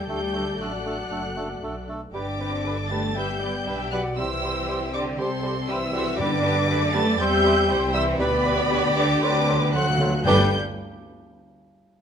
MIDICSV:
0, 0, Header, 1, 12, 480
1, 0, Start_track
1, 0, Key_signature, 1, "major"
1, 0, Tempo, 514139
1, 82, Time_signature, 4, 2, 24, 8
1, 2483, Tempo, 504202
1, 7763, Tempo, 518583
1, 11289, End_track
2, 0, Start_track
2, 0, Title_t, "Violin section"
2, 0, Program_c, 0, 48
2, 75, Note_on_c, 0, 91, 96
2, 547, Note_off_c, 0, 91, 0
2, 557, Note_on_c, 0, 90, 78
2, 1761, Note_off_c, 0, 90, 0
2, 1999, Note_on_c, 0, 86, 93
2, 2683, Note_off_c, 0, 86, 0
2, 2712, Note_on_c, 0, 93, 97
2, 2958, Note_off_c, 0, 93, 0
2, 2963, Note_on_c, 0, 91, 98
2, 3679, Note_on_c, 0, 90, 82
2, 3688, Note_off_c, 0, 91, 0
2, 3755, Note_off_c, 0, 90, 0
2, 3924, Note_on_c, 0, 88, 114
2, 4635, Note_off_c, 0, 88, 0
2, 4649, Note_on_c, 0, 86, 89
2, 4725, Note_off_c, 0, 86, 0
2, 4894, Note_on_c, 0, 84, 103
2, 5363, Note_on_c, 0, 88, 106
2, 5367, Note_off_c, 0, 84, 0
2, 5842, Note_off_c, 0, 88, 0
2, 5847, Note_on_c, 0, 86, 127
2, 6545, Note_off_c, 0, 86, 0
2, 6552, Note_on_c, 0, 93, 116
2, 6795, Note_off_c, 0, 93, 0
2, 6799, Note_on_c, 0, 91, 127
2, 7509, Note_on_c, 0, 88, 119
2, 7520, Note_off_c, 0, 91, 0
2, 7585, Note_off_c, 0, 88, 0
2, 7757, Note_on_c, 0, 83, 127
2, 8457, Note_off_c, 0, 83, 0
2, 8470, Note_on_c, 0, 86, 127
2, 8694, Note_off_c, 0, 86, 0
2, 8705, Note_on_c, 0, 86, 126
2, 9180, Note_off_c, 0, 86, 0
2, 9187, Note_on_c, 0, 90, 116
2, 9665, Note_off_c, 0, 90, 0
2, 9669, Note_on_c, 0, 91, 116
2, 9942, Note_off_c, 0, 91, 0
2, 11289, End_track
3, 0, Start_track
3, 0, Title_t, "Flute"
3, 0, Program_c, 1, 73
3, 76, Note_on_c, 1, 79, 73
3, 383, Note_off_c, 1, 79, 0
3, 570, Note_on_c, 1, 78, 63
3, 1730, Note_off_c, 1, 78, 0
3, 1984, Note_on_c, 1, 74, 76
3, 2714, Note_on_c, 1, 81, 82
3, 2729, Note_off_c, 1, 74, 0
3, 2951, Note_on_c, 1, 79, 72
3, 2966, Note_off_c, 1, 81, 0
3, 3669, Note_off_c, 1, 79, 0
3, 3674, Note_on_c, 1, 78, 90
3, 3940, Note_on_c, 1, 76, 81
3, 3954, Note_off_c, 1, 78, 0
3, 4656, Note_on_c, 1, 74, 88
3, 4671, Note_off_c, 1, 76, 0
3, 4893, Note_on_c, 1, 72, 86
3, 4908, Note_off_c, 1, 74, 0
3, 5158, Note_off_c, 1, 72, 0
3, 5374, Note_on_c, 1, 76, 98
3, 5838, Note_on_c, 1, 74, 110
3, 5853, Note_off_c, 1, 76, 0
3, 6537, Note_on_c, 1, 81, 106
3, 6552, Note_off_c, 1, 74, 0
3, 6787, Note_off_c, 1, 81, 0
3, 6794, Note_on_c, 1, 79, 107
3, 7514, Note_on_c, 1, 76, 127
3, 7528, Note_off_c, 1, 79, 0
3, 7744, Note_off_c, 1, 76, 0
3, 7750, Note_on_c, 1, 71, 111
3, 8458, Note_on_c, 1, 74, 110
3, 8472, Note_off_c, 1, 71, 0
3, 8700, Note_off_c, 1, 74, 0
3, 8706, Note_on_c, 1, 74, 97
3, 9015, Note_off_c, 1, 74, 0
3, 9175, Note_on_c, 1, 78, 110
3, 9635, Note_off_c, 1, 78, 0
3, 9656, Note_on_c, 1, 79, 99
3, 9935, Note_off_c, 1, 79, 0
3, 11289, End_track
4, 0, Start_track
4, 0, Title_t, "Viola section"
4, 0, Program_c, 2, 48
4, 76, Note_on_c, 2, 74, 70
4, 1726, Note_off_c, 2, 74, 0
4, 2956, Note_on_c, 2, 76, 87
4, 3183, Note_off_c, 2, 76, 0
4, 3191, Note_on_c, 2, 74, 68
4, 3439, Note_on_c, 2, 76, 79
4, 3440, Note_off_c, 2, 74, 0
4, 3685, Note_off_c, 2, 76, 0
4, 3692, Note_on_c, 2, 74, 81
4, 3931, Note_off_c, 2, 74, 0
4, 3936, Note_on_c, 2, 72, 92
4, 4877, Note_off_c, 2, 72, 0
4, 4893, Note_on_c, 2, 67, 84
4, 4969, Note_off_c, 2, 67, 0
4, 5128, Note_on_c, 2, 69, 77
4, 5204, Note_off_c, 2, 69, 0
4, 5372, Note_on_c, 2, 71, 81
4, 5448, Note_off_c, 2, 71, 0
4, 5614, Note_on_c, 2, 69, 88
4, 5843, Note_on_c, 2, 71, 91
4, 5844, Note_off_c, 2, 69, 0
4, 6309, Note_off_c, 2, 71, 0
4, 6319, Note_on_c, 2, 74, 101
4, 6788, Note_off_c, 2, 74, 0
4, 6795, Note_on_c, 2, 76, 120
4, 7269, Note_on_c, 2, 72, 102
4, 7277, Note_off_c, 2, 76, 0
4, 7741, Note_on_c, 2, 74, 125
4, 7757, Note_off_c, 2, 72, 0
4, 8684, Note_off_c, 2, 74, 0
4, 8694, Note_on_c, 2, 71, 114
4, 9180, Note_on_c, 2, 69, 85
4, 9184, Note_off_c, 2, 71, 0
4, 9430, Note_off_c, 2, 69, 0
4, 9669, Note_on_c, 2, 50, 104
4, 9674, Note_on_c, 2, 62, 85
4, 9941, Note_off_c, 2, 50, 0
4, 9945, Note_off_c, 2, 62, 0
4, 11289, End_track
5, 0, Start_track
5, 0, Title_t, "Cor anglais"
5, 0, Program_c, 3, 69
5, 94, Note_on_c, 3, 69, 57
5, 198, Note_off_c, 3, 69, 0
5, 328, Note_on_c, 3, 69, 51
5, 434, Note_off_c, 3, 69, 0
5, 571, Note_on_c, 3, 69, 54
5, 676, Note_off_c, 3, 69, 0
5, 804, Note_on_c, 3, 69, 52
5, 911, Note_off_c, 3, 69, 0
5, 1042, Note_on_c, 3, 69, 52
5, 1150, Note_off_c, 3, 69, 0
5, 1284, Note_on_c, 3, 69, 49
5, 1392, Note_off_c, 3, 69, 0
5, 1535, Note_on_c, 3, 69, 52
5, 1640, Note_off_c, 3, 69, 0
5, 1765, Note_on_c, 3, 69, 55
5, 1873, Note_off_c, 3, 69, 0
5, 2008, Note_on_c, 3, 71, 57
5, 2115, Note_off_c, 3, 71, 0
5, 2248, Note_on_c, 3, 71, 58
5, 2354, Note_off_c, 3, 71, 0
5, 2489, Note_on_c, 3, 71, 62
5, 2596, Note_off_c, 3, 71, 0
5, 2724, Note_on_c, 3, 71, 54
5, 2832, Note_off_c, 3, 71, 0
5, 2975, Note_on_c, 3, 71, 62
5, 3081, Note_off_c, 3, 71, 0
5, 3229, Note_on_c, 3, 71, 61
5, 3332, Note_off_c, 3, 71, 0
5, 3463, Note_on_c, 3, 71, 63
5, 3568, Note_off_c, 3, 71, 0
5, 3695, Note_on_c, 3, 71, 69
5, 3802, Note_off_c, 3, 71, 0
5, 3945, Note_on_c, 3, 72, 62
5, 4050, Note_off_c, 3, 72, 0
5, 4177, Note_on_c, 3, 72, 70
5, 4284, Note_off_c, 3, 72, 0
5, 4424, Note_on_c, 3, 72, 68
5, 4530, Note_off_c, 3, 72, 0
5, 4677, Note_on_c, 3, 72, 62
5, 4780, Note_off_c, 3, 72, 0
5, 4911, Note_on_c, 3, 72, 77
5, 5015, Note_off_c, 3, 72, 0
5, 5149, Note_on_c, 3, 72, 69
5, 5254, Note_off_c, 3, 72, 0
5, 5404, Note_on_c, 3, 72, 80
5, 5504, Note_off_c, 3, 72, 0
5, 5639, Note_on_c, 3, 72, 81
5, 5739, Note_off_c, 3, 72, 0
5, 5862, Note_on_c, 3, 71, 80
5, 5965, Note_off_c, 3, 71, 0
5, 6114, Note_on_c, 3, 71, 77
5, 6214, Note_off_c, 3, 71, 0
5, 6338, Note_on_c, 3, 71, 87
5, 6442, Note_off_c, 3, 71, 0
5, 6572, Note_on_c, 3, 71, 78
5, 6677, Note_off_c, 3, 71, 0
5, 6815, Note_on_c, 3, 72, 93
5, 6919, Note_off_c, 3, 72, 0
5, 7055, Note_on_c, 3, 72, 81
5, 7160, Note_off_c, 3, 72, 0
5, 7287, Note_on_c, 3, 72, 87
5, 7393, Note_off_c, 3, 72, 0
5, 7519, Note_on_c, 3, 72, 89
5, 7628, Note_off_c, 3, 72, 0
5, 7766, Note_on_c, 3, 71, 95
5, 7872, Note_off_c, 3, 71, 0
5, 8004, Note_on_c, 3, 71, 87
5, 8109, Note_off_c, 3, 71, 0
5, 8245, Note_on_c, 3, 71, 85
5, 8350, Note_off_c, 3, 71, 0
5, 8480, Note_on_c, 3, 71, 81
5, 8586, Note_off_c, 3, 71, 0
5, 8706, Note_on_c, 3, 72, 84
5, 8816, Note_off_c, 3, 72, 0
5, 8949, Note_on_c, 3, 72, 78
5, 9058, Note_off_c, 3, 72, 0
5, 9197, Note_on_c, 3, 72, 79
5, 9306, Note_off_c, 3, 72, 0
5, 9436, Note_on_c, 3, 72, 72
5, 9545, Note_off_c, 3, 72, 0
5, 9679, Note_on_c, 3, 74, 102
5, 9880, Note_off_c, 3, 74, 0
5, 11289, End_track
6, 0, Start_track
6, 0, Title_t, "Clarinet"
6, 0, Program_c, 4, 71
6, 85, Note_on_c, 4, 62, 54
6, 191, Note_off_c, 4, 62, 0
6, 332, Note_on_c, 4, 62, 47
6, 437, Note_off_c, 4, 62, 0
6, 572, Note_on_c, 4, 62, 48
6, 677, Note_off_c, 4, 62, 0
6, 799, Note_on_c, 4, 62, 49
6, 907, Note_off_c, 4, 62, 0
6, 1034, Note_on_c, 4, 62, 51
6, 1143, Note_off_c, 4, 62, 0
6, 1278, Note_on_c, 4, 62, 51
6, 1387, Note_off_c, 4, 62, 0
6, 1515, Note_on_c, 4, 62, 51
6, 1625, Note_off_c, 4, 62, 0
6, 1756, Note_on_c, 4, 62, 48
6, 1866, Note_off_c, 4, 62, 0
6, 1993, Note_on_c, 4, 67, 65
6, 2103, Note_off_c, 4, 67, 0
6, 2236, Note_on_c, 4, 67, 56
6, 2345, Note_off_c, 4, 67, 0
6, 2476, Note_on_c, 4, 67, 55
6, 2586, Note_off_c, 4, 67, 0
6, 2729, Note_on_c, 4, 67, 58
6, 2836, Note_off_c, 4, 67, 0
6, 2968, Note_on_c, 4, 67, 64
6, 3075, Note_off_c, 4, 67, 0
6, 3199, Note_on_c, 4, 67, 61
6, 3309, Note_off_c, 4, 67, 0
6, 3460, Note_on_c, 4, 67, 52
6, 3566, Note_off_c, 4, 67, 0
6, 3691, Note_on_c, 4, 67, 58
6, 3799, Note_off_c, 4, 67, 0
6, 3929, Note_on_c, 4, 67, 65
6, 4038, Note_off_c, 4, 67, 0
6, 4163, Note_on_c, 4, 67, 58
6, 4273, Note_off_c, 4, 67, 0
6, 4403, Note_on_c, 4, 67, 70
6, 4513, Note_off_c, 4, 67, 0
6, 4653, Note_on_c, 4, 67, 65
6, 4761, Note_off_c, 4, 67, 0
6, 4885, Note_on_c, 4, 67, 78
6, 4996, Note_off_c, 4, 67, 0
6, 5138, Note_on_c, 4, 67, 68
6, 5246, Note_off_c, 4, 67, 0
6, 5373, Note_on_c, 4, 67, 66
6, 5481, Note_off_c, 4, 67, 0
6, 5610, Note_on_c, 4, 67, 66
6, 5716, Note_off_c, 4, 67, 0
6, 5854, Note_on_c, 4, 67, 73
6, 5958, Note_off_c, 4, 67, 0
6, 6075, Note_on_c, 4, 67, 73
6, 6184, Note_off_c, 4, 67, 0
6, 6315, Note_on_c, 4, 67, 86
6, 6424, Note_off_c, 4, 67, 0
6, 6555, Note_on_c, 4, 67, 75
6, 6664, Note_off_c, 4, 67, 0
6, 6789, Note_on_c, 4, 67, 86
6, 6899, Note_off_c, 4, 67, 0
6, 7032, Note_on_c, 4, 67, 85
6, 7142, Note_off_c, 4, 67, 0
6, 7273, Note_on_c, 4, 67, 79
6, 7383, Note_off_c, 4, 67, 0
6, 7512, Note_on_c, 4, 67, 89
6, 7623, Note_off_c, 4, 67, 0
6, 7740, Note_on_c, 4, 67, 83
6, 7852, Note_off_c, 4, 67, 0
6, 7992, Note_on_c, 4, 67, 81
6, 8100, Note_off_c, 4, 67, 0
6, 8221, Note_on_c, 4, 67, 85
6, 8331, Note_off_c, 4, 67, 0
6, 8463, Note_on_c, 4, 67, 79
6, 8573, Note_off_c, 4, 67, 0
6, 8699, Note_on_c, 4, 69, 82
6, 8810, Note_off_c, 4, 69, 0
6, 8946, Note_on_c, 4, 69, 78
6, 9056, Note_off_c, 4, 69, 0
6, 9179, Note_on_c, 4, 69, 74
6, 9292, Note_off_c, 4, 69, 0
6, 9426, Note_on_c, 4, 69, 75
6, 9538, Note_off_c, 4, 69, 0
6, 9674, Note_on_c, 4, 71, 105
6, 9877, Note_off_c, 4, 71, 0
6, 11289, End_track
7, 0, Start_track
7, 0, Title_t, "French horn section"
7, 0, Program_c, 5, 60
7, 81, Note_on_c, 5, 67, 85
7, 550, Note_off_c, 5, 67, 0
7, 552, Note_on_c, 5, 66, 59
7, 1735, Note_off_c, 5, 66, 0
7, 2008, Note_on_c, 5, 62, 87
7, 2688, Note_off_c, 5, 62, 0
7, 2725, Note_on_c, 5, 69, 78
7, 2965, Note_off_c, 5, 69, 0
7, 2983, Note_on_c, 5, 67, 73
7, 3698, Note_off_c, 5, 67, 0
7, 3703, Note_on_c, 5, 66, 70
7, 3937, Note_off_c, 5, 66, 0
7, 3959, Note_on_c, 5, 64, 100
7, 4653, Note_off_c, 5, 64, 0
7, 4675, Note_on_c, 5, 62, 80
7, 4778, Note_off_c, 5, 62, 0
7, 4922, Note_on_c, 5, 60, 92
7, 5381, Note_off_c, 5, 60, 0
7, 5398, Note_on_c, 5, 64, 95
7, 5860, Note_off_c, 5, 64, 0
7, 5865, Note_on_c, 5, 62, 115
7, 6554, Note_off_c, 5, 62, 0
7, 6572, Note_on_c, 5, 69, 112
7, 6800, Note_off_c, 5, 69, 0
7, 6801, Note_on_c, 5, 67, 116
7, 7507, Note_off_c, 5, 67, 0
7, 7517, Note_on_c, 5, 64, 101
7, 7756, Note_off_c, 5, 64, 0
7, 7778, Note_on_c, 5, 59, 118
7, 8480, Note_on_c, 5, 62, 98
7, 8481, Note_off_c, 5, 59, 0
7, 8716, Note_off_c, 5, 62, 0
7, 8726, Note_on_c, 5, 62, 113
7, 9191, Note_off_c, 5, 62, 0
7, 9203, Note_on_c, 5, 66, 90
7, 9674, Note_off_c, 5, 66, 0
7, 9696, Note_on_c, 5, 55, 118
7, 9891, Note_off_c, 5, 55, 0
7, 11289, End_track
8, 0, Start_track
8, 0, Title_t, "Violin section"
8, 0, Program_c, 6, 48
8, 74, Note_on_c, 6, 57, 66
8, 75, Note_on_c, 6, 69, 64
8, 1775, Note_off_c, 6, 57, 0
8, 1776, Note_off_c, 6, 69, 0
8, 1994, Note_on_c, 6, 59, 61
8, 1996, Note_on_c, 6, 67, 60
8, 2069, Note_off_c, 6, 59, 0
8, 2239, Note_on_c, 6, 60, 67
8, 2444, Note_off_c, 6, 67, 0
8, 2470, Note_on_c, 6, 69, 60
8, 2475, Note_off_c, 6, 60, 0
8, 2478, Note_on_c, 6, 62, 62
8, 2717, Note_on_c, 6, 67, 61
8, 2718, Note_off_c, 6, 69, 0
8, 2951, Note_on_c, 6, 59, 73
8, 2962, Note_off_c, 6, 62, 0
8, 3181, Note_off_c, 6, 59, 0
8, 3193, Note_on_c, 6, 59, 72
8, 3424, Note_off_c, 6, 67, 0
8, 3433, Note_on_c, 6, 62, 76
8, 3435, Note_on_c, 6, 67, 71
8, 3436, Note_off_c, 6, 59, 0
8, 3657, Note_off_c, 6, 62, 0
8, 3669, Note_on_c, 6, 62, 75
8, 3745, Note_off_c, 6, 62, 0
8, 3900, Note_off_c, 6, 67, 0
8, 3911, Note_on_c, 6, 67, 72
8, 3915, Note_on_c, 6, 60, 70
8, 3991, Note_off_c, 6, 60, 0
8, 4162, Note_on_c, 6, 60, 72
8, 4864, Note_off_c, 6, 67, 0
8, 4882, Note_on_c, 6, 69, 73
8, 5347, Note_off_c, 6, 60, 0
8, 5364, Note_on_c, 6, 60, 82
8, 5364, Note_on_c, 6, 67, 81
8, 5370, Note_off_c, 6, 69, 0
8, 5440, Note_off_c, 6, 67, 0
8, 5608, Note_on_c, 6, 66, 89
8, 5833, Note_off_c, 6, 60, 0
8, 5841, Note_off_c, 6, 66, 0
8, 5843, Note_on_c, 6, 67, 80
8, 5847, Note_on_c, 6, 59, 84
8, 6078, Note_off_c, 6, 67, 0
8, 6089, Note_on_c, 6, 67, 90
8, 6165, Note_off_c, 6, 67, 0
8, 6313, Note_on_c, 6, 69, 78
8, 6317, Note_on_c, 6, 57, 98
8, 6320, Note_off_c, 6, 59, 0
8, 6551, Note_on_c, 6, 59, 88
8, 6558, Note_off_c, 6, 57, 0
8, 6785, Note_off_c, 6, 69, 0
8, 6788, Note_on_c, 6, 60, 91
8, 6791, Note_on_c, 6, 67, 86
8, 6794, Note_off_c, 6, 59, 0
8, 7248, Note_off_c, 6, 60, 0
8, 7259, Note_on_c, 6, 60, 87
8, 7261, Note_on_c, 6, 64, 90
8, 7275, Note_off_c, 6, 67, 0
8, 7742, Note_off_c, 6, 60, 0
8, 7742, Note_on_c, 6, 67, 107
8, 7743, Note_off_c, 6, 64, 0
8, 7747, Note_on_c, 6, 59, 98
8, 8210, Note_on_c, 6, 62, 88
8, 8228, Note_off_c, 6, 59, 0
8, 8696, Note_on_c, 6, 60, 90
8, 8700, Note_off_c, 6, 62, 0
8, 8945, Note_off_c, 6, 60, 0
8, 8948, Note_on_c, 6, 59, 98
8, 9179, Note_on_c, 6, 57, 85
8, 9181, Note_on_c, 6, 66, 83
8, 9184, Note_off_c, 6, 67, 0
8, 9191, Note_off_c, 6, 59, 0
8, 9482, Note_off_c, 6, 57, 0
8, 9483, Note_off_c, 6, 66, 0
8, 9660, Note_on_c, 6, 62, 95
8, 9665, Note_on_c, 6, 71, 98
8, 9937, Note_off_c, 6, 62, 0
8, 9939, Note_off_c, 6, 71, 0
8, 11289, End_track
9, 0, Start_track
9, 0, Title_t, "Bassoon"
9, 0, Program_c, 7, 70
9, 87, Note_on_c, 7, 57, 57
9, 194, Note_off_c, 7, 57, 0
9, 311, Note_on_c, 7, 57, 45
9, 421, Note_off_c, 7, 57, 0
9, 565, Note_on_c, 7, 57, 50
9, 672, Note_off_c, 7, 57, 0
9, 800, Note_on_c, 7, 57, 52
9, 907, Note_off_c, 7, 57, 0
9, 1044, Note_on_c, 7, 57, 52
9, 1151, Note_off_c, 7, 57, 0
9, 1274, Note_on_c, 7, 57, 54
9, 1384, Note_off_c, 7, 57, 0
9, 1524, Note_on_c, 7, 57, 52
9, 1632, Note_off_c, 7, 57, 0
9, 1763, Note_on_c, 7, 57, 59
9, 1872, Note_off_c, 7, 57, 0
9, 1997, Note_on_c, 7, 55, 63
9, 2107, Note_off_c, 7, 55, 0
9, 2243, Note_on_c, 7, 55, 61
9, 2350, Note_off_c, 7, 55, 0
9, 2480, Note_on_c, 7, 55, 53
9, 2589, Note_off_c, 7, 55, 0
9, 2714, Note_on_c, 7, 55, 63
9, 2825, Note_off_c, 7, 55, 0
9, 2959, Note_on_c, 7, 55, 57
9, 3069, Note_off_c, 7, 55, 0
9, 3197, Note_on_c, 7, 55, 56
9, 3308, Note_off_c, 7, 55, 0
9, 3441, Note_on_c, 7, 55, 58
9, 3551, Note_off_c, 7, 55, 0
9, 3687, Note_on_c, 7, 55, 65
9, 3796, Note_off_c, 7, 55, 0
9, 3931, Note_on_c, 7, 55, 73
9, 4039, Note_off_c, 7, 55, 0
9, 4156, Note_on_c, 7, 55, 60
9, 4268, Note_off_c, 7, 55, 0
9, 4406, Note_on_c, 7, 55, 67
9, 4516, Note_off_c, 7, 55, 0
9, 4649, Note_on_c, 7, 55, 76
9, 4758, Note_off_c, 7, 55, 0
9, 4883, Note_on_c, 7, 55, 67
9, 4994, Note_off_c, 7, 55, 0
9, 5119, Note_on_c, 7, 55, 67
9, 5231, Note_off_c, 7, 55, 0
9, 5359, Note_on_c, 7, 55, 67
9, 5470, Note_off_c, 7, 55, 0
9, 5591, Note_on_c, 7, 55, 72
9, 5702, Note_off_c, 7, 55, 0
9, 5827, Note_on_c, 7, 55, 91
9, 5938, Note_off_c, 7, 55, 0
9, 6069, Note_on_c, 7, 55, 76
9, 6179, Note_off_c, 7, 55, 0
9, 6306, Note_on_c, 7, 55, 86
9, 6417, Note_off_c, 7, 55, 0
9, 6556, Note_on_c, 7, 55, 94
9, 6664, Note_off_c, 7, 55, 0
9, 6797, Note_on_c, 7, 55, 76
9, 6905, Note_off_c, 7, 55, 0
9, 7035, Note_on_c, 7, 55, 82
9, 7144, Note_off_c, 7, 55, 0
9, 7265, Note_on_c, 7, 55, 86
9, 7377, Note_off_c, 7, 55, 0
9, 7509, Note_on_c, 7, 55, 88
9, 7620, Note_off_c, 7, 55, 0
9, 7758, Note_on_c, 7, 55, 94
9, 7865, Note_off_c, 7, 55, 0
9, 7993, Note_on_c, 7, 55, 79
9, 8101, Note_off_c, 7, 55, 0
9, 8235, Note_on_c, 7, 55, 85
9, 8343, Note_off_c, 7, 55, 0
9, 8466, Note_on_c, 7, 55, 84
9, 8576, Note_off_c, 7, 55, 0
9, 8708, Note_on_c, 7, 54, 78
9, 8817, Note_off_c, 7, 54, 0
9, 8943, Note_on_c, 7, 54, 73
9, 9053, Note_off_c, 7, 54, 0
9, 9196, Note_on_c, 7, 54, 70
9, 9304, Note_off_c, 7, 54, 0
9, 9431, Note_on_c, 7, 54, 80
9, 9541, Note_off_c, 7, 54, 0
9, 9694, Note_on_c, 7, 55, 100
9, 9890, Note_off_c, 7, 55, 0
9, 11289, End_track
10, 0, Start_track
10, 0, Title_t, "Cello section"
10, 0, Program_c, 8, 48
10, 83, Note_on_c, 8, 55, 83
10, 551, Note_off_c, 8, 55, 0
10, 556, Note_on_c, 8, 54, 59
10, 1760, Note_off_c, 8, 54, 0
10, 2001, Note_on_c, 8, 50, 77
10, 2684, Note_off_c, 8, 50, 0
10, 2720, Note_on_c, 8, 57, 78
10, 2957, Note_off_c, 8, 57, 0
10, 2965, Note_on_c, 8, 55, 75
10, 3674, Note_off_c, 8, 55, 0
10, 3684, Note_on_c, 8, 54, 81
10, 3760, Note_off_c, 8, 54, 0
10, 3928, Note_on_c, 8, 52, 84
10, 4637, Note_off_c, 8, 52, 0
10, 4659, Note_on_c, 8, 50, 82
10, 4891, Note_off_c, 8, 50, 0
10, 4895, Note_on_c, 8, 48, 86
10, 5376, Note_off_c, 8, 48, 0
10, 5380, Note_on_c, 8, 52, 95
10, 5849, Note_on_c, 8, 50, 104
10, 5851, Note_off_c, 8, 52, 0
10, 6546, Note_off_c, 8, 50, 0
10, 6559, Note_on_c, 8, 57, 105
10, 6793, Note_on_c, 8, 55, 96
10, 6798, Note_off_c, 8, 57, 0
10, 7503, Note_off_c, 8, 55, 0
10, 7512, Note_on_c, 8, 52, 108
10, 7752, Note_on_c, 8, 47, 107
10, 7753, Note_off_c, 8, 52, 0
10, 8464, Note_on_c, 8, 50, 102
10, 8469, Note_off_c, 8, 47, 0
10, 8687, Note_off_c, 8, 50, 0
10, 8698, Note_on_c, 8, 50, 99
10, 9177, Note_off_c, 8, 50, 0
10, 9186, Note_on_c, 8, 54, 96
10, 9675, Note_off_c, 8, 54, 0
10, 9679, Note_on_c, 8, 55, 105
10, 9947, Note_off_c, 8, 55, 0
10, 11289, End_track
11, 0, Start_track
11, 0, Title_t, "Timpani"
11, 0, Program_c, 10, 47
11, 69, Note_on_c, 10, 50, 74
11, 756, Note_off_c, 10, 50, 0
11, 5847, Note_on_c, 10, 43, 100
11, 6521, Note_off_c, 10, 43, 0
11, 8698, Note_on_c, 10, 50, 45
11, 8765, Note_off_c, 10, 50, 0
11, 8919, Note_on_c, 10, 50, 54
11, 8977, Note_off_c, 10, 50, 0
11, 8988, Note_on_c, 10, 50, 60
11, 9050, Note_off_c, 10, 50, 0
11, 9061, Note_on_c, 10, 50, 66
11, 9116, Note_off_c, 10, 50, 0
11, 9127, Note_on_c, 10, 50, 72
11, 9182, Note_off_c, 10, 50, 0
11, 9193, Note_on_c, 10, 50, 86
11, 9248, Note_off_c, 10, 50, 0
11, 9259, Note_on_c, 10, 50, 81
11, 9320, Note_off_c, 10, 50, 0
11, 9331, Note_on_c, 10, 50, 111
11, 9394, Note_off_c, 10, 50, 0
11, 9405, Note_on_c, 10, 50, 114
11, 9461, Note_off_c, 10, 50, 0
11, 9472, Note_on_c, 10, 50, 102
11, 9531, Note_off_c, 10, 50, 0
11, 9543, Note_on_c, 10, 50, 96
11, 9621, Note_off_c, 10, 50, 0
11, 9651, Note_on_c, 10, 43, 118
11, 9887, Note_off_c, 10, 43, 0
11, 11289, End_track
12, 0, Start_track
12, 0, Title_t, "Double bass section"
12, 0, Program_c, 11, 48
12, 78, Note_on_c, 11, 38, 61
12, 549, Note_off_c, 11, 38, 0
12, 557, Note_on_c, 11, 33, 57
12, 1028, Note_off_c, 11, 33, 0
12, 1033, Note_on_c, 11, 30, 62
12, 1508, Note_off_c, 11, 30, 0
12, 1514, Note_on_c, 11, 35, 58
12, 1990, Note_off_c, 11, 35, 0
12, 1992, Note_on_c, 11, 31, 73
12, 3403, Note_off_c, 11, 31, 0
12, 3452, Note_on_c, 11, 35, 66
12, 3923, Note_off_c, 11, 35, 0
12, 3924, Note_on_c, 11, 36, 77
12, 5842, Note_on_c, 11, 43, 87
12, 5846, Note_off_c, 11, 36, 0
12, 6309, Note_off_c, 11, 43, 0
12, 6314, Note_on_c, 11, 42, 85
12, 6795, Note_off_c, 11, 42, 0
12, 6795, Note_on_c, 11, 40, 95
12, 7268, Note_on_c, 11, 36, 95
12, 7277, Note_off_c, 11, 40, 0
12, 7751, Note_on_c, 11, 38, 95
12, 7757, Note_off_c, 11, 36, 0
12, 8685, Note_off_c, 11, 38, 0
12, 8696, Note_on_c, 11, 38, 107
12, 9465, Note_off_c, 11, 38, 0
12, 9670, Note_on_c, 11, 31, 104
12, 9942, Note_off_c, 11, 31, 0
12, 11289, End_track
0, 0, End_of_file